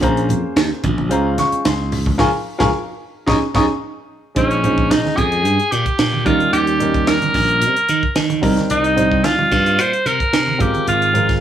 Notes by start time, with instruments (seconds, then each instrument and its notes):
0.01 slap bass A#1, grand piano A#3 C#4 G#4 C5 A#5, kick, closed hi-hat
0.17 closed hi-hat
0.29 slap bass F2, closed hi-hat, low conga
0.56 slap bass D#2, snare, closed hi-hat
0.84 slap bass A#1, kick, closed hi-hat, high conga, low conga
0.98 high conga
1.09 slap bass C#2, grand piano G#3 C#4 F4 C5 A#5, closed hi-hat
1.38 grand piano C#6, snare, closed hi-hat, high conga
1.52 muted slap bass stroke, closed hi-hat
1.65 slap bass C#2, grand piano C6, snare, closed hi-hat
1.92 open hi-hat, low conga
2.06 kick, high conga
2.18 slap bass C#2, grand piano F4 G#4 A#4 G#5 A#5 C#6, kick, snare, low conga
2.58 slap bass C#2, grand piano F4 G#4 A#4 G#5 A#5 C#6, kick, snare, low conga
3.26 slap bass D#2, grand piano C#4 D#4 G#4 A#5 C#6 D#6, kick, snare, low conga
3.54 slap bass D#2, grand piano C#4 D#4 G#4 A#5 C#6 D#6, kick, snare, low conga
4.35 slap bass A#1, grand piano G#3 C#4 D#4 C5, alto saxophone C#4, kick, closed hi-hat
4.51 closed hi-hat
4.63 grand piano G#3 C#4 D#4 C5, closed hi-hat, low conga
4.78 kick
4.90 slap bass A#1, alto saxophone D#4, snare, closed hi-hat
5.04 muted slap bass stroke, snare, high conga
5.17 slap bass F2, alto saxophone G#4, kick, closed hi-hat, low conga
5.32 closed hi-hat
5.45 slap bass G2, closed hi-hat
5.59 closed hi-hat
5.72 slap bass A#2, alto saxophone G4, closed hi-hat
5.86 kick, closed hi-hat
5.99 slap bass A#2, snare, closed hi-hat
6.13 high conga
6.25 slap bass D#2, grand piano G3 C#4 D#4 A#4, alto saxophone F4, kick, closed hi-hat, high conga, low conga
6.40 closed hi-hat, high conga
6.53 slap bass D#2, alto saxophone G4, closed hi-hat
6.67 closed hi-hat
6.79 grand piano G3 C#4 D#4 A#4, closed hi-hat, low conga
6.94 kick, closed hi-hat
7.07 slap bass D#2, alto saxophone A#4, snare, closed hi-hat
7.22 closed hi-hat, high conga
7.34 slap bass A#1, kick, snare, open hi-hat, low conga
7.49 closed hi-hat
7.61 slap bass C3, closed hi-hat
7.76 closed hi-hat
7.89 slap bass D#3, closed hi-hat
8.03 kick
8.15 slap bass D#3, snare, closed hi-hat
8.30 closed hi-hat, high conga
8.41 slap bass C2, grand piano G3 C4 D#4 A#4, kick, open hi-hat, high conga, low conga
8.57 snare, closed hi-hat, high conga
8.70 slap bass C2, alto saxophone D#4, closed hi-hat
8.84 closed hi-hat
8.95 grand piano G3 C4 D#4 C5, closed hi-hat, low conga
9.12 kick
9.24 slap bass C2, alto saxophone F4, snare, closed hi-hat
9.39 high conga
9.51 slap bass G2, kick, snare, closed hi-hat, low conga
9.66 closed hi-hat
9.79 slap bass A#2, alto saxophone C5, closed hi-hat
9.93 closed hi-hat
10.06 slap bass C3, alto saxophone A#4, closed hi-hat
10.20 kick, closed hi-hat
10.33 slap bass C3, snare, closed hi-hat
10.47 high conga
10.58 slap bass G#1, grand piano G#3 C4 F4 A#4, alto saxophone G4, kick, closed hi-hat, high conga, low conga
10.74 closed hi-hat, high conga
10.87 slap bass G#1, alto saxophone F4, closed hi-hat
11.02 closed hi-hat
11.13 grand piano G#3 C4 F4 A#4, closed hi-hat, low conga
11.29 kick, snare, closed hi-hat